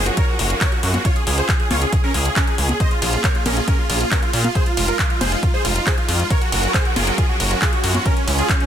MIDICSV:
0, 0, Header, 1, 5, 480
1, 0, Start_track
1, 0, Key_signature, -5, "minor"
1, 0, Tempo, 437956
1, 1150, Time_signature, 4, 2, 24, 8
1, 9491, End_track
2, 0, Start_track
2, 0, Title_t, "Supersaw synth"
2, 0, Program_c, 0, 81
2, 71, Note_on_c, 0, 66, 64
2, 158, Note_off_c, 0, 66, 0
2, 192, Note_on_c, 0, 73, 97
2, 193, Note_on_c, 0, 70, 77
2, 279, Note_off_c, 0, 70, 0
2, 279, Note_off_c, 0, 73, 0
2, 312, Note_on_c, 0, 66, 68
2, 398, Note_off_c, 0, 66, 0
2, 431, Note_on_c, 0, 66, 65
2, 518, Note_off_c, 0, 66, 0
2, 551, Note_on_c, 0, 66, 65
2, 638, Note_off_c, 0, 66, 0
2, 669, Note_on_c, 0, 70, 80
2, 669, Note_on_c, 0, 73, 98
2, 757, Note_off_c, 0, 70, 0
2, 757, Note_off_c, 0, 73, 0
2, 788, Note_on_c, 0, 66, 65
2, 877, Note_off_c, 0, 66, 0
2, 912, Note_on_c, 0, 66, 64
2, 998, Note_off_c, 0, 66, 0
2, 1032, Note_on_c, 0, 66, 64
2, 1119, Note_off_c, 0, 66, 0
2, 1152, Note_on_c, 0, 73, 97
2, 1153, Note_on_c, 0, 65, 79
2, 1239, Note_off_c, 0, 65, 0
2, 1239, Note_off_c, 0, 73, 0
2, 1271, Note_on_c, 0, 68, 62
2, 1358, Note_off_c, 0, 68, 0
2, 1392, Note_on_c, 0, 68, 63
2, 1479, Note_off_c, 0, 68, 0
2, 1510, Note_on_c, 0, 68, 77
2, 1510, Note_on_c, 0, 72, 92
2, 1597, Note_off_c, 0, 72, 0
2, 1598, Note_off_c, 0, 68, 0
2, 1630, Note_on_c, 0, 68, 66
2, 1718, Note_off_c, 0, 68, 0
2, 1750, Note_on_c, 0, 68, 65
2, 1838, Note_off_c, 0, 68, 0
2, 1871, Note_on_c, 0, 65, 79
2, 1871, Note_on_c, 0, 73, 97
2, 1958, Note_off_c, 0, 65, 0
2, 1958, Note_off_c, 0, 73, 0
2, 1993, Note_on_c, 0, 68, 65
2, 2079, Note_off_c, 0, 68, 0
2, 2111, Note_on_c, 0, 68, 63
2, 2198, Note_off_c, 0, 68, 0
2, 2232, Note_on_c, 0, 70, 96
2, 2233, Note_on_c, 0, 61, 74
2, 2318, Note_off_c, 0, 70, 0
2, 2319, Note_off_c, 0, 61, 0
2, 2354, Note_on_c, 0, 68, 66
2, 2439, Note_off_c, 0, 68, 0
2, 2473, Note_on_c, 0, 68, 68
2, 2559, Note_off_c, 0, 68, 0
2, 2592, Note_on_c, 0, 70, 94
2, 2593, Note_on_c, 0, 61, 79
2, 2678, Note_off_c, 0, 70, 0
2, 2679, Note_off_c, 0, 61, 0
2, 2714, Note_on_c, 0, 68, 66
2, 2799, Note_off_c, 0, 68, 0
2, 2833, Note_on_c, 0, 68, 63
2, 2919, Note_off_c, 0, 68, 0
2, 2953, Note_on_c, 0, 68, 65
2, 3039, Note_off_c, 0, 68, 0
2, 3074, Note_on_c, 0, 72, 80
2, 3074, Note_on_c, 0, 75, 102
2, 3159, Note_off_c, 0, 75, 0
2, 3160, Note_off_c, 0, 72, 0
2, 3193, Note_on_c, 0, 65, 64
2, 3279, Note_off_c, 0, 65, 0
2, 3312, Note_on_c, 0, 65, 64
2, 3399, Note_off_c, 0, 65, 0
2, 3430, Note_on_c, 0, 65, 64
2, 3518, Note_off_c, 0, 65, 0
2, 3552, Note_on_c, 0, 70, 75
2, 3552, Note_on_c, 0, 73, 92
2, 3639, Note_off_c, 0, 70, 0
2, 3639, Note_off_c, 0, 73, 0
2, 3671, Note_on_c, 0, 65, 66
2, 3758, Note_off_c, 0, 65, 0
2, 3791, Note_on_c, 0, 61, 78
2, 3792, Note_on_c, 0, 70, 90
2, 3878, Note_off_c, 0, 61, 0
2, 3878, Note_off_c, 0, 70, 0
2, 3912, Note_on_c, 0, 65, 65
2, 3998, Note_off_c, 0, 65, 0
2, 4030, Note_on_c, 0, 70, 99
2, 4031, Note_on_c, 0, 61, 76
2, 4118, Note_off_c, 0, 61, 0
2, 4118, Note_off_c, 0, 70, 0
2, 4148, Note_on_c, 0, 65, 67
2, 4237, Note_off_c, 0, 65, 0
2, 4269, Note_on_c, 0, 65, 66
2, 4357, Note_off_c, 0, 65, 0
2, 4389, Note_on_c, 0, 65, 65
2, 4477, Note_off_c, 0, 65, 0
2, 4509, Note_on_c, 0, 61, 78
2, 4509, Note_on_c, 0, 70, 98
2, 4597, Note_off_c, 0, 61, 0
2, 4597, Note_off_c, 0, 70, 0
2, 4629, Note_on_c, 0, 65, 66
2, 4717, Note_off_c, 0, 65, 0
2, 4749, Note_on_c, 0, 65, 64
2, 4837, Note_off_c, 0, 65, 0
2, 4870, Note_on_c, 0, 65, 65
2, 4958, Note_off_c, 0, 65, 0
2, 4989, Note_on_c, 0, 68, 79
2, 4990, Note_on_c, 0, 72, 100
2, 5077, Note_off_c, 0, 68, 0
2, 5077, Note_off_c, 0, 72, 0
2, 5112, Note_on_c, 0, 65, 65
2, 5199, Note_off_c, 0, 65, 0
2, 5231, Note_on_c, 0, 65, 65
2, 5318, Note_off_c, 0, 65, 0
2, 5350, Note_on_c, 0, 70, 95
2, 5351, Note_on_c, 0, 65, 76
2, 5437, Note_off_c, 0, 70, 0
2, 5438, Note_off_c, 0, 65, 0
2, 5470, Note_on_c, 0, 65, 66
2, 5557, Note_off_c, 0, 65, 0
2, 5586, Note_on_c, 0, 65, 66
2, 5675, Note_off_c, 0, 65, 0
2, 5706, Note_on_c, 0, 68, 75
2, 5708, Note_on_c, 0, 72, 94
2, 5796, Note_off_c, 0, 68, 0
2, 5796, Note_off_c, 0, 72, 0
2, 5829, Note_on_c, 0, 65, 68
2, 5917, Note_off_c, 0, 65, 0
2, 5948, Note_on_c, 0, 65, 66
2, 6037, Note_off_c, 0, 65, 0
2, 6069, Note_on_c, 0, 72, 96
2, 6070, Note_on_c, 0, 68, 77
2, 6157, Note_off_c, 0, 68, 0
2, 6157, Note_off_c, 0, 72, 0
2, 6190, Note_on_c, 0, 65, 64
2, 6277, Note_off_c, 0, 65, 0
2, 6309, Note_on_c, 0, 65, 66
2, 6397, Note_off_c, 0, 65, 0
2, 6430, Note_on_c, 0, 68, 76
2, 6430, Note_on_c, 0, 72, 99
2, 6517, Note_off_c, 0, 72, 0
2, 6518, Note_off_c, 0, 68, 0
2, 6549, Note_on_c, 0, 65, 64
2, 6637, Note_off_c, 0, 65, 0
2, 6667, Note_on_c, 0, 65, 64
2, 6756, Note_off_c, 0, 65, 0
2, 6787, Note_on_c, 0, 65, 64
2, 6876, Note_off_c, 0, 65, 0
2, 6908, Note_on_c, 0, 73, 102
2, 6909, Note_on_c, 0, 70, 80
2, 6997, Note_off_c, 0, 70, 0
2, 6997, Note_off_c, 0, 73, 0
2, 7031, Note_on_c, 0, 66, 63
2, 7118, Note_off_c, 0, 66, 0
2, 7151, Note_on_c, 0, 66, 67
2, 7238, Note_off_c, 0, 66, 0
2, 7269, Note_on_c, 0, 66, 62
2, 7357, Note_off_c, 0, 66, 0
2, 7390, Note_on_c, 0, 68, 78
2, 7391, Note_on_c, 0, 72, 88
2, 7478, Note_off_c, 0, 68, 0
2, 7478, Note_off_c, 0, 72, 0
2, 7510, Note_on_c, 0, 66, 66
2, 7597, Note_off_c, 0, 66, 0
2, 7630, Note_on_c, 0, 65, 80
2, 7630, Note_on_c, 0, 68, 92
2, 7717, Note_off_c, 0, 68, 0
2, 7718, Note_off_c, 0, 65, 0
2, 7750, Note_on_c, 0, 66, 69
2, 7837, Note_off_c, 0, 66, 0
2, 7867, Note_on_c, 0, 65, 77
2, 7868, Note_on_c, 0, 68, 93
2, 7956, Note_off_c, 0, 65, 0
2, 7956, Note_off_c, 0, 68, 0
2, 7990, Note_on_c, 0, 66, 66
2, 8077, Note_off_c, 0, 66, 0
2, 8109, Note_on_c, 0, 66, 65
2, 8197, Note_off_c, 0, 66, 0
2, 8230, Note_on_c, 0, 66, 65
2, 8317, Note_off_c, 0, 66, 0
2, 8350, Note_on_c, 0, 65, 81
2, 8350, Note_on_c, 0, 68, 97
2, 8438, Note_off_c, 0, 65, 0
2, 8438, Note_off_c, 0, 68, 0
2, 8471, Note_on_c, 0, 66, 65
2, 8558, Note_off_c, 0, 66, 0
2, 8591, Note_on_c, 0, 66, 63
2, 8678, Note_off_c, 0, 66, 0
2, 8712, Note_on_c, 0, 66, 63
2, 8799, Note_off_c, 0, 66, 0
2, 8832, Note_on_c, 0, 70, 97
2, 8833, Note_on_c, 0, 61, 80
2, 8918, Note_off_c, 0, 70, 0
2, 8919, Note_off_c, 0, 61, 0
2, 8951, Note_on_c, 0, 61, 67
2, 9038, Note_off_c, 0, 61, 0
2, 9071, Note_on_c, 0, 61, 66
2, 9158, Note_off_c, 0, 61, 0
2, 9191, Note_on_c, 0, 65, 78
2, 9192, Note_on_c, 0, 68, 95
2, 9278, Note_off_c, 0, 65, 0
2, 9278, Note_off_c, 0, 68, 0
2, 9311, Note_on_c, 0, 61, 63
2, 9398, Note_off_c, 0, 61, 0
2, 9431, Note_on_c, 0, 61, 65
2, 9491, Note_off_c, 0, 61, 0
2, 9491, End_track
3, 0, Start_track
3, 0, Title_t, "String section"
3, 0, Program_c, 1, 48
3, 0, Note_on_c, 1, 54, 80
3, 0, Note_on_c, 1, 61, 75
3, 0, Note_on_c, 1, 65, 75
3, 0, Note_on_c, 1, 68, 74
3, 0, Note_on_c, 1, 70, 89
3, 1130, Note_off_c, 1, 54, 0
3, 1130, Note_off_c, 1, 70, 0
3, 1131, Note_off_c, 1, 68, 0
3, 1150, Note_on_c, 1, 68, 94
3, 3031, Note_off_c, 1, 65, 0
3, 3071, Note_on_c, 1, 58, 82
3, 4945, Note_off_c, 1, 61, 0
3, 4952, Note_off_c, 1, 68, 0
3, 4971, Note_off_c, 1, 58, 0
3, 4989, Note_on_c, 1, 63, 72
3, 4990, Note_on_c, 1, 56, 84
3, 4990, Note_on_c, 1, 65, 91
3, 6890, Note_off_c, 1, 63, 0
3, 6891, Note_off_c, 1, 56, 0
3, 6908, Note_on_c, 1, 54, 82
3, 6909, Note_on_c, 1, 61, 75
3, 6909, Note_on_c, 1, 68, 76
3, 6909, Note_on_c, 1, 70, 93
3, 8810, Note_off_c, 1, 54, 0
3, 8810, Note_off_c, 1, 68, 0
3, 8810, Note_off_c, 1, 70, 0
3, 8832, Note_on_c, 1, 56, 86
3, 9491, Note_off_c, 1, 56, 0
3, 9491, Note_off_c, 1, 61, 0
3, 9491, Note_off_c, 1, 65, 0
3, 9491, End_track
4, 0, Start_track
4, 0, Title_t, "Analog synth bass"
4, 0, Program_c, 2, 38
4, 0, Note_on_c, 2, 30, 89
4, 111, Note_off_c, 2, 30, 0
4, 430, Note_on_c, 2, 30, 96
4, 591, Note_off_c, 2, 30, 0
4, 911, Note_on_c, 2, 42, 96
4, 1071, Note_off_c, 2, 42, 0
4, 1391, Note_on_c, 2, 37, 97
4, 1552, Note_off_c, 2, 37, 0
4, 1872, Note_on_c, 2, 37, 88
4, 2032, Note_off_c, 2, 37, 0
4, 2351, Note_on_c, 2, 37, 93
4, 2512, Note_off_c, 2, 37, 0
4, 2830, Note_on_c, 2, 37, 81
4, 2991, Note_off_c, 2, 37, 0
4, 3311, Note_on_c, 2, 34, 99
4, 3472, Note_off_c, 2, 34, 0
4, 3791, Note_on_c, 2, 34, 88
4, 3952, Note_off_c, 2, 34, 0
4, 4271, Note_on_c, 2, 34, 93
4, 4432, Note_off_c, 2, 34, 0
4, 4749, Note_on_c, 2, 46, 97
4, 4911, Note_off_c, 2, 46, 0
4, 5230, Note_on_c, 2, 29, 96
4, 5391, Note_off_c, 2, 29, 0
4, 5709, Note_on_c, 2, 29, 89
4, 5870, Note_off_c, 2, 29, 0
4, 6189, Note_on_c, 2, 29, 94
4, 6351, Note_off_c, 2, 29, 0
4, 6668, Note_on_c, 2, 41, 97
4, 6830, Note_off_c, 2, 41, 0
4, 7149, Note_on_c, 2, 30, 100
4, 7310, Note_off_c, 2, 30, 0
4, 7631, Note_on_c, 2, 30, 87
4, 7791, Note_off_c, 2, 30, 0
4, 8111, Note_on_c, 2, 30, 93
4, 8272, Note_off_c, 2, 30, 0
4, 8589, Note_on_c, 2, 42, 98
4, 8751, Note_off_c, 2, 42, 0
4, 9069, Note_on_c, 2, 37, 98
4, 9231, Note_off_c, 2, 37, 0
4, 9491, End_track
5, 0, Start_track
5, 0, Title_t, "Drums"
5, 69, Note_on_c, 9, 42, 52
5, 178, Note_off_c, 9, 42, 0
5, 188, Note_on_c, 9, 42, 80
5, 189, Note_on_c, 9, 36, 123
5, 298, Note_off_c, 9, 42, 0
5, 299, Note_off_c, 9, 36, 0
5, 429, Note_on_c, 9, 46, 110
5, 538, Note_off_c, 9, 46, 0
5, 550, Note_on_c, 9, 42, 55
5, 659, Note_off_c, 9, 42, 0
5, 670, Note_on_c, 9, 36, 122
5, 670, Note_on_c, 9, 39, 124
5, 670, Note_on_c, 9, 42, 80
5, 779, Note_off_c, 9, 36, 0
5, 779, Note_off_c, 9, 39, 0
5, 779, Note_off_c, 9, 42, 0
5, 790, Note_on_c, 9, 42, 37
5, 900, Note_off_c, 9, 42, 0
5, 910, Note_on_c, 9, 46, 113
5, 1020, Note_off_c, 9, 46, 0
5, 1031, Note_on_c, 9, 42, 52
5, 1031, Note_on_c, 9, 63, 63
5, 1140, Note_off_c, 9, 42, 0
5, 1140, Note_off_c, 9, 63, 0
5, 1150, Note_on_c, 9, 36, 125
5, 1151, Note_on_c, 9, 42, 80
5, 1260, Note_off_c, 9, 36, 0
5, 1260, Note_off_c, 9, 42, 0
5, 1270, Note_on_c, 9, 42, 35
5, 1380, Note_off_c, 9, 42, 0
5, 1390, Note_on_c, 9, 46, 116
5, 1500, Note_off_c, 9, 46, 0
5, 1510, Note_on_c, 9, 42, 53
5, 1620, Note_off_c, 9, 42, 0
5, 1630, Note_on_c, 9, 36, 127
5, 1630, Note_on_c, 9, 39, 122
5, 1630, Note_on_c, 9, 42, 81
5, 1740, Note_off_c, 9, 36, 0
5, 1740, Note_off_c, 9, 39, 0
5, 1740, Note_off_c, 9, 42, 0
5, 1750, Note_on_c, 9, 42, 34
5, 1860, Note_off_c, 9, 42, 0
5, 1870, Note_on_c, 9, 46, 116
5, 1870, Note_on_c, 9, 63, 89
5, 1980, Note_off_c, 9, 46, 0
5, 1980, Note_off_c, 9, 63, 0
5, 1991, Note_on_c, 9, 42, 49
5, 2100, Note_off_c, 9, 42, 0
5, 2110, Note_on_c, 9, 36, 119
5, 2110, Note_on_c, 9, 42, 79
5, 2220, Note_off_c, 9, 36, 0
5, 2220, Note_off_c, 9, 42, 0
5, 2349, Note_on_c, 9, 46, 115
5, 2459, Note_off_c, 9, 46, 0
5, 2471, Note_on_c, 9, 42, 53
5, 2581, Note_off_c, 9, 42, 0
5, 2590, Note_on_c, 9, 36, 124
5, 2590, Note_on_c, 9, 39, 114
5, 2590, Note_on_c, 9, 42, 76
5, 2700, Note_off_c, 9, 36, 0
5, 2700, Note_off_c, 9, 39, 0
5, 2700, Note_off_c, 9, 42, 0
5, 2711, Note_on_c, 9, 42, 36
5, 2821, Note_off_c, 9, 42, 0
5, 2830, Note_on_c, 9, 46, 116
5, 2940, Note_off_c, 9, 46, 0
5, 2951, Note_on_c, 9, 42, 51
5, 2951, Note_on_c, 9, 63, 64
5, 3060, Note_off_c, 9, 42, 0
5, 3060, Note_off_c, 9, 63, 0
5, 3070, Note_on_c, 9, 36, 124
5, 3070, Note_on_c, 9, 42, 76
5, 3179, Note_off_c, 9, 36, 0
5, 3180, Note_off_c, 9, 42, 0
5, 3190, Note_on_c, 9, 42, 35
5, 3300, Note_off_c, 9, 42, 0
5, 3310, Note_on_c, 9, 46, 106
5, 3310, Note_on_c, 9, 51, 81
5, 3420, Note_off_c, 9, 46, 0
5, 3420, Note_off_c, 9, 51, 0
5, 3430, Note_on_c, 9, 42, 53
5, 3540, Note_off_c, 9, 42, 0
5, 3550, Note_on_c, 9, 36, 127
5, 3550, Note_on_c, 9, 39, 118
5, 3550, Note_on_c, 9, 42, 80
5, 3660, Note_off_c, 9, 36, 0
5, 3660, Note_off_c, 9, 39, 0
5, 3660, Note_off_c, 9, 42, 0
5, 3669, Note_on_c, 9, 42, 35
5, 3779, Note_off_c, 9, 42, 0
5, 3789, Note_on_c, 9, 46, 113
5, 3789, Note_on_c, 9, 51, 84
5, 3789, Note_on_c, 9, 63, 91
5, 3899, Note_off_c, 9, 46, 0
5, 3899, Note_off_c, 9, 51, 0
5, 3899, Note_off_c, 9, 63, 0
5, 3910, Note_on_c, 9, 42, 53
5, 4020, Note_off_c, 9, 42, 0
5, 4030, Note_on_c, 9, 36, 123
5, 4030, Note_on_c, 9, 42, 76
5, 4139, Note_off_c, 9, 36, 0
5, 4139, Note_off_c, 9, 42, 0
5, 4270, Note_on_c, 9, 46, 105
5, 4270, Note_on_c, 9, 51, 83
5, 4379, Note_off_c, 9, 46, 0
5, 4379, Note_off_c, 9, 51, 0
5, 4390, Note_on_c, 9, 42, 52
5, 4500, Note_off_c, 9, 42, 0
5, 4510, Note_on_c, 9, 36, 110
5, 4510, Note_on_c, 9, 39, 118
5, 4510, Note_on_c, 9, 42, 78
5, 4619, Note_off_c, 9, 36, 0
5, 4620, Note_off_c, 9, 39, 0
5, 4620, Note_off_c, 9, 42, 0
5, 4631, Note_on_c, 9, 42, 37
5, 4740, Note_off_c, 9, 42, 0
5, 4751, Note_on_c, 9, 46, 108
5, 4751, Note_on_c, 9, 51, 82
5, 4860, Note_off_c, 9, 46, 0
5, 4860, Note_off_c, 9, 51, 0
5, 4871, Note_on_c, 9, 42, 52
5, 4871, Note_on_c, 9, 63, 67
5, 4980, Note_off_c, 9, 42, 0
5, 4980, Note_off_c, 9, 63, 0
5, 4990, Note_on_c, 9, 36, 117
5, 4991, Note_on_c, 9, 42, 81
5, 5099, Note_off_c, 9, 36, 0
5, 5100, Note_off_c, 9, 42, 0
5, 5110, Note_on_c, 9, 42, 37
5, 5219, Note_off_c, 9, 42, 0
5, 5230, Note_on_c, 9, 46, 103
5, 5230, Note_on_c, 9, 51, 85
5, 5340, Note_off_c, 9, 46, 0
5, 5340, Note_off_c, 9, 51, 0
5, 5350, Note_on_c, 9, 42, 54
5, 5460, Note_off_c, 9, 42, 0
5, 5470, Note_on_c, 9, 36, 116
5, 5471, Note_on_c, 9, 39, 121
5, 5471, Note_on_c, 9, 42, 82
5, 5579, Note_off_c, 9, 36, 0
5, 5581, Note_off_c, 9, 39, 0
5, 5581, Note_off_c, 9, 42, 0
5, 5591, Note_on_c, 9, 42, 36
5, 5700, Note_off_c, 9, 42, 0
5, 5711, Note_on_c, 9, 46, 106
5, 5711, Note_on_c, 9, 51, 88
5, 5711, Note_on_c, 9, 63, 90
5, 5821, Note_off_c, 9, 46, 0
5, 5821, Note_off_c, 9, 51, 0
5, 5821, Note_off_c, 9, 63, 0
5, 5831, Note_on_c, 9, 42, 54
5, 5940, Note_off_c, 9, 42, 0
5, 5950, Note_on_c, 9, 36, 116
5, 5950, Note_on_c, 9, 42, 78
5, 6059, Note_off_c, 9, 36, 0
5, 6060, Note_off_c, 9, 42, 0
5, 6190, Note_on_c, 9, 46, 99
5, 6190, Note_on_c, 9, 51, 81
5, 6300, Note_off_c, 9, 46, 0
5, 6300, Note_off_c, 9, 51, 0
5, 6310, Note_on_c, 9, 42, 55
5, 6419, Note_off_c, 9, 42, 0
5, 6430, Note_on_c, 9, 36, 114
5, 6430, Note_on_c, 9, 39, 115
5, 6430, Note_on_c, 9, 42, 81
5, 6539, Note_off_c, 9, 36, 0
5, 6539, Note_off_c, 9, 39, 0
5, 6539, Note_off_c, 9, 42, 0
5, 6550, Note_on_c, 9, 42, 36
5, 6660, Note_off_c, 9, 42, 0
5, 6670, Note_on_c, 9, 46, 102
5, 6670, Note_on_c, 9, 51, 83
5, 6779, Note_off_c, 9, 46, 0
5, 6779, Note_off_c, 9, 51, 0
5, 6791, Note_on_c, 9, 42, 54
5, 6901, Note_off_c, 9, 42, 0
5, 6910, Note_on_c, 9, 36, 114
5, 6910, Note_on_c, 9, 42, 87
5, 7019, Note_off_c, 9, 36, 0
5, 7019, Note_off_c, 9, 42, 0
5, 7031, Note_on_c, 9, 42, 39
5, 7141, Note_off_c, 9, 42, 0
5, 7150, Note_on_c, 9, 46, 102
5, 7150, Note_on_c, 9, 51, 86
5, 7259, Note_off_c, 9, 46, 0
5, 7259, Note_off_c, 9, 51, 0
5, 7270, Note_on_c, 9, 42, 57
5, 7380, Note_off_c, 9, 42, 0
5, 7390, Note_on_c, 9, 36, 121
5, 7391, Note_on_c, 9, 39, 121
5, 7391, Note_on_c, 9, 42, 85
5, 7499, Note_off_c, 9, 36, 0
5, 7500, Note_off_c, 9, 39, 0
5, 7500, Note_off_c, 9, 42, 0
5, 7511, Note_on_c, 9, 42, 38
5, 7620, Note_off_c, 9, 42, 0
5, 7631, Note_on_c, 9, 46, 108
5, 7631, Note_on_c, 9, 51, 88
5, 7631, Note_on_c, 9, 63, 88
5, 7740, Note_off_c, 9, 46, 0
5, 7740, Note_off_c, 9, 51, 0
5, 7740, Note_off_c, 9, 63, 0
5, 7751, Note_on_c, 9, 42, 56
5, 7860, Note_off_c, 9, 42, 0
5, 7870, Note_on_c, 9, 36, 116
5, 7870, Note_on_c, 9, 42, 83
5, 7979, Note_off_c, 9, 36, 0
5, 7980, Note_off_c, 9, 42, 0
5, 8111, Note_on_c, 9, 46, 102
5, 8111, Note_on_c, 9, 51, 84
5, 8220, Note_off_c, 9, 46, 0
5, 8220, Note_off_c, 9, 51, 0
5, 8230, Note_on_c, 9, 42, 57
5, 8339, Note_off_c, 9, 42, 0
5, 8350, Note_on_c, 9, 36, 109
5, 8350, Note_on_c, 9, 39, 112
5, 8350, Note_on_c, 9, 42, 82
5, 8459, Note_off_c, 9, 39, 0
5, 8459, Note_off_c, 9, 42, 0
5, 8460, Note_off_c, 9, 36, 0
5, 8469, Note_on_c, 9, 42, 39
5, 8579, Note_off_c, 9, 42, 0
5, 8589, Note_on_c, 9, 46, 102
5, 8589, Note_on_c, 9, 51, 85
5, 8698, Note_off_c, 9, 46, 0
5, 8698, Note_off_c, 9, 51, 0
5, 8709, Note_on_c, 9, 42, 57
5, 8709, Note_on_c, 9, 63, 65
5, 8819, Note_off_c, 9, 42, 0
5, 8819, Note_off_c, 9, 63, 0
5, 8829, Note_on_c, 9, 36, 114
5, 8830, Note_on_c, 9, 42, 87
5, 8939, Note_off_c, 9, 36, 0
5, 8940, Note_off_c, 9, 42, 0
5, 8951, Note_on_c, 9, 42, 40
5, 9060, Note_off_c, 9, 42, 0
5, 9070, Note_on_c, 9, 46, 102
5, 9070, Note_on_c, 9, 51, 84
5, 9179, Note_off_c, 9, 46, 0
5, 9179, Note_off_c, 9, 51, 0
5, 9191, Note_on_c, 9, 42, 56
5, 9300, Note_off_c, 9, 42, 0
5, 9309, Note_on_c, 9, 36, 120
5, 9310, Note_on_c, 9, 39, 127
5, 9310, Note_on_c, 9, 42, 88
5, 9419, Note_off_c, 9, 36, 0
5, 9420, Note_off_c, 9, 39, 0
5, 9420, Note_off_c, 9, 42, 0
5, 9430, Note_on_c, 9, 42, 39
5, 9491, Note_off_c, 9, 42, 0
5, 9491, End_track
0, 0, End_of_file